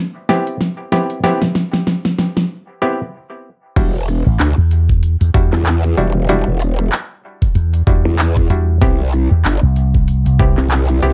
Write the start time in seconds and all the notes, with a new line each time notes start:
0.29 B3 C4 E4 G4, snare
0.47 closed hi-hat
0.61 snare, closed hi-hat
0.92 B3 C4 E4 G4, snare
1.10 closed hi-hat
1.24 B3 C4 E4 G4, snare, closed hi-hat
1.42 snare
1.55 snare
1.73 snare, closed hi-hat
1.87 snare, closed hi-hat
2.05 snare
2.19 snare
2.37 snare, closed hi-hat
2.82 B3 C4 E4 G4
3.76 E1 G3 D4 E4 F#4, kick, closed hi-hat, crash
4.08 cross-stick, closed hi-hat
4.26 A1
4.40 D2, clap, closed hi-hat
4.58 E2
4.71 closed hi-hat
4.89 kick
5.03 closed hi-hat
5.21 E2, closed hi-hat
5.34 E2 G3 D4 E4 F#4, kick
5.53 E2, clap
5.66 clap, closed hi-hat
5.84 closed hi-hat
5.97 E1 G3 D4 E4 F#4, closed hi-hat
6.29 G3 D4 E4 F#4, closed hi-hat
6.47 E1
6.60 cross-stick, closed hi-hat
6.92 clap, closed hi-hat
7.42 kick, closed hi-hat
7.55 E2, closed hi-hat
7.74 closed hi-hat
7.87 E2 G3 D4 E4 F#4, kick
8.05 E2
8.19 clap, closed hi-hat
8.37 kick, cross-stick, closed hi-hat
8.50 E2 G3 D4 E4 F#4, closed hi-hat
8.82 C2 B3 C4 E4 G4, kick, closed hi-hat
9.13 cross-stick, closed hi-hat
9.31 E2
9.45 G1, clap, closed hi-hat
9.63 C2
9.76 closed hi-hat
9.94 kick
10.08 closed hi-hat
10.26 C2, closed hi-hat
10.39 C2 B3 C4 E4 G4, kick
10.57 C2, clap
10.71 clap, closed hi-hat
10.89 closed hi-hat
11.03 C2 B3 C4 E4 G4, closed hi-hat